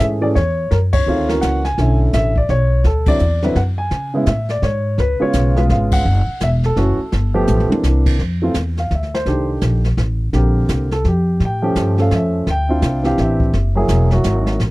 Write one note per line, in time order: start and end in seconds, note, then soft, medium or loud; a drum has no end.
0.00 0.34 G#2 medium
0.00 0.20 E3 medium
0.00 0.20 A3 medium
0.00 0.20 C#4 medium
0.00 0.21 G#4 medium
0.00 kick soft
0.00 snare medium
0.21 0.34 E3 medium
0.21 0.34 A3 medium
0.21 0.34 C#4 medium
0.21 0.35 G#4 medium
0.21 0.27 D5 medium
0.35 0.70 E2 medium
0.35 0.72 C#5 medium
0.35 kick soft
0.35 snare soft
0.71 1.06 F#2 medium
0.71 0.76 A#4 medium
0.71 brush sweep soft
0.71 kick soft
0.71 snare soft
0.93 1.30 C#5 loud
0.93 kick medium
0.93 ride medium
1.06 1.41 D2 medium
1.06 1.27 D#3 medium
1.06 1.27 A3 medium
1.06 1.27 C4 medium
1.06 1.28 F4 medium
1.29 1.60 E3 medium
1.29 1.60 A#3 medium
1.29 1.61 C#4 medium
1.29 1.61 F#4 medium
1.29 1.42 A#4 medium
1.29 snare soft
1.41 1.77 C#2 medium
1.41 1.62 F#5 medium
1.41 kick soft
1.41 snare medium
1.41 hi-hat pedal medium
1.65 1.98 G#5 medium
1.65 snare soft
1.78 2.12 B1 medium
1.78 2.32 D3 medium
1.78 2.32 A3 medium
1.78 2.32 C#4 medium
1.78 2.32 E4 medium
1.78 brush sweep medium
1.78 kick soft
1.78 snare soft
2.13 2.48 A1 medium
2.13 2.37 E5 medium
2.13 kick soft
2.13 snare medium
2.13 hi-hat pedal medium
2.36 2.50 D5 medium
2.36 kick medium
2.49 2.84 B1 medium
2.49 2.83 C#5 medium
2.49 kick soft
2.49 snare soft
2.84 3.19 D2 medium
2.84 3.06 A4 medium
2.84 brush sweep soft
2.84 snare soft
3.06 3.19 D3 medium
3.06 3.19 F#3 medium
3.06 3.20 C4 medium
3.06 3.20 E4 medium
3.06 3.44 D5 loud
3.06 kick medium
3.06 ride medium
3.19 3.55 E2 medium
3.19 hi-hat pedal medium
3.42 3.55 D3 medium
3.42 3.55 F#3 medium
3.42 3.55 C4 medium
3.42 3.55 E4 medium
3.42 3.57 B4 medium
3.42 snare soft
3.55 3.90 F#2 medium
3.55 3.61 F#5 medium
3.55 kick soft
3.55 snare soft
3.78 4.11 G#5 medium
3.91 4.26 C#3 medium
3.91 brush sweep soft
3.91 kick soft
3.91 snare soft
4.14 4.26 C#3 medium
4.14 4.26 G#3 medium
4.14 4.27 B3 medium
4.14 4.27 E4 medium
4.26 4.62 A2 medium
4.26 4.48 E5 medium
4.26 kick soft
4.26 snare medium
4.26 hi-hat pedal medium
4.49 4.64 D5 medium
4.49 snare soft
4.62 4.97 G#2 medium
4.62 5.00 C#5 medium
4.62 kick soft
4.62 snare soft
4.98 5.19 C#2 medium
4.98 5.22 B4 medium
4.98 brush sweep soft
4.98 kick soft
4.98 snare soft
5.20 5.54 C#3 medium
5.20 5.54 G#3 medium
5.20 5.54 B3 medium
5.20 5.55 F4 medium
5.20 5.58 C#5 medium
5.20 muted upright bass stroke soft
5.33 5.69 B1 medium
5.33 kick soft
5.33 snare medium
5.33 hi-hat pedal medium
5.56 6.03 C#3 medium
5.56 6.03 G#3 medium
5.56 6.03 B3 medium
5.56 6.03 F4 medium
5.56 5.62 B4 medium
5.56 snare soft
5.69 6.04 G#1 medium
5.69 5.77 F5 medium
5.69 kick soft
5.69 snare soft
5.91 6.43 F#5 loud
5.91 kick medium
5.91 ride medium
6.05 6.26 F#1 medium
6.05 brush sweep soft
6.27 muted upright bass stroke soft
6.40 6.76 E1 medium
6.40 6.48 E5 medium
6.40 kick soft
6.40 snare medium
6.40 hi-hat pedal medium
6.63 7.81 A4 medium
6.63 snare soft
6.76 6.97 F#1 medium
6.76 6.97 E3 medium
6.76 6.97 A3 medium
6.76 6.97 C#4 medium
6.76 6.98 F#4 medium
6.76 kick soft
6.76 snare soft
6.98 muted upright bass stroke soft
7.12 7.47 G1 medium
7.12 brush sweep soft
7.12 kick soft
7.12 snare soft
7.34 7.68 F3 medium
7.34 7.68 A3 medium
7.34 7.69 B3 medium
7.34 7.69 G4 medium
7.47 7.69 A1 medium
7.47 hi-hat pedal medium
7.47 high tom soft
7.60 high tom medium
7.69 8.16 E3 medium
7.69 8.17 A#3 medium
7.69 8.17 C4 medium
7.69 8.17 D4 medium
7.69 muted upright bass stroke soft
7.69 high tom medium
7.83 8.18 C2 medium
7.83 snare medium
7.83 hi-hat pedal medium
8.06 kick medium
8.06 crash medium
8.19 8.54 F2 medium
8.19 brush sweep soft
8.19 snare soft
8.42 8.54 E3 medium
8.42 8.54 A3 medium
8.42 8.54 C4 medium
8.42 8.55 F4 medium
8.54 8.89 E2 medium
8.54 kick soft
8.54 snare medium
8.54 hi-hat pedal medium
8.77 8.92 F5 medium
8.77 snare soft
8.91 9.25 D2 medium
8.91 kick soft
8.91 snare soft
8.95 9.15 E5 medium
9.03 snare soft
9.14 9.47 C5 medium
9.14 snare soft
9.26 9.61 C2 medium
9.26 9.80 D#3 medium
9.26 9.80 A3 soft
9.26 9.80 D4 medium
9.26 9.81 G4 medium
9.26 brush sweep soft
9.26 kick soft
9.26 snare soft
9.61 9.97 A#1 medium
9.61 kick soft
9.61 snare medium
9.61 hi-hat pedal medium
9.84 snare soft
9.97 10.32 A1 medium
9.97 kick soft
9.97 snare soft
10.33 10.68 A#1 medium
10.33 10.87 D3 medium
10.33 10.87 A#3 medium
10.33 10.87 C4 medium
10.33 10.87 G4 medium
10.33 brush sweep soft
10.33 kick soft
10.33 snare soft
10.37 10.89 A#4 medium
10.68 11.04 C2 medium
10.68 kick soft
10.68 snare medium
10.68 hi-hat pedal medium
10.91 11.05 A4 medium
10.91 snare soft
11.04 11.39 F2 medium
11.04 11.60 G4 medium
11.04 kick soft
11.04 snare soft
11.40 11.74 A2 medium
11.40 brush sweep soft
11.40 kick soft
11.40 snare soft
11.45 11.96 G5 medium
11.62 11.96 F3 medium
11.62 11.96 A3 medium
11.62 11.96 C#4 medium
11.62 11.96 G4 medium
11.76 12.10 G2 medium
11.76 kick soft
11.76 snare medium
11.76 hi-hat pedal medium
11.98 12.44 F3 medium
11.98 12.44 A3 medium
11.98 12.44 C#4 medium
11.98 12.45 A4 medium
11.98 snare soft
12.02 12.13 F5 medium
12.11 12.45 F2 medium
12.11 kick soft
12.11 snare soft
12.15 12.67 E5 medium
12.47 12.81 D2 medium
12.47 13.02 G5 medium
12.47 brush sweep soft
12.47 kick soft
12.47 snare soft
12.69 13.02 C4 medium
12.69 13.03 D4 medium
12.69 13.02 E4 medium
12.69 13.03 F4 medium
12.82 13.16 C2 medium
12.82 kick soft
12.82 snare medium
12.82 hi-hat pedal medium
13.03 13.50 E3 medium
13.03 13.50 C4 medium
13.03 13.51 D4 medium
13.03 13.51 G4 medium
13.03 13.18 F5 medium
13.03 snare soft
13.18 13.52 A1 medium
13.18 13.73 E5 medium
13.18 kick soft
13.18 snare soft
13.40 kick medium
13.53 13.88 F#1 medium
13.53 brush sweep soft
13.53 snare soft
13.75 14.09 F#3 medium
13.75 14.09 A#3 medium
13.75 14.09 E4 medium
13.75 14.09 G#4 medium
13.88 14.23 E1 medium
13.88 kick soft
13.88 snare medium
13.88 hi-hat pedal medium
14.11 14.57 F#3 medium
14.11 14.58 A#3 medium
14.11 14.58 E4 medium
14.11 14.58 F#4 medium
14.11 snare soft
14.24 14.58 G#1 medium
14.24 kick soft
14.24 snare medium
14.24 hi-hat pedal medium
14.46 snare soft
14.60 14.71 A1 medium
14.60 brush sweep soft
14.60 kick soft
14.60 snare soft